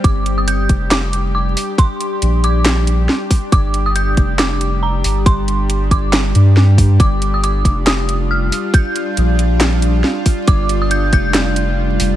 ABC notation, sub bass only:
X:1
M:4/4
L:1/8
Q:"Swing 16ths" 1/4=138
K:Gm
V:1 name="Sub bass" clef=bass
G,,,3 F,,,4 z | z2 B,,,4 z2 | G,,,3 F,,,4 G,,,- | G,,,4- G,,, G,,3 |
G,,,3 F,,,4 z | z2 B,,,4 z2 | G,,,3 F,,,4 F,,, |]